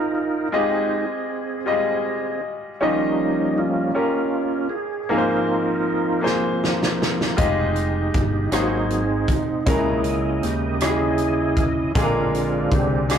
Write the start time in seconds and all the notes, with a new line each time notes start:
Already playing: G#2 G#3 C4 D#4 F4 A#4
0.15 A#4
0.52 G#3 C4 F4 G4 G#4 D#5
0.56 G#3 D#4
1.66 G3 F4 G4 D#5
1.72 G#3
2.81 D#3 F3 G3 A#3 C#4 D#4 F4 G4 D#5
3.58 A#3 C#4 F4
3.95 C#4 F4 G4 A#4
4.70 G#4
5.09 G#2 F3 A#3 C4 D#4 F4 G#4 A#4
5.18 C5
6.21 A#3 F4 G#4 C5
6.26 snare
6.64 snare
6.83 snare
7.02 snare
7.21 snare
7.37 F1 G#3 F4 G4 D#5, kick, closed hi-hat
7.41 D#4 G4
7.76 closed hi-hat
8.14 G1, kick, cross-stick, closed hi-hat
8.52 G#1 G#2 F#3 G#3 A#3 C4 D#4 F#4 G#4 C5, cross-stick, closed hi-hat
8.90 closed hi-hat
9.28 D#4, kick, closed hi-hat
9.66 C#2 C#3 G#3 A#3 C#4 E4 A#4 D#5, kick, closed hi-hat
10.04 closed hi-hat
10.43 D#2 G4, cross-stick, closed hi-hat
10.80 G#3 C#4 E4 G4 G#4, cross-stick, closed hi-hat
10.89 G#4
11.18 closed hi-hat
11.57 kick, closed hi-hat
11.95 A#1 A#2 D3 G#3 C4 D4 F4 G#4, kick, closed hi-hat
12.04 A#4
12.35 closed hi-hat
12.71 C2 D4 G4, kick, closed hi-hat
13.09 D3 G#3 C4 D4 F4 G#4, cross-stick, closed hi-hat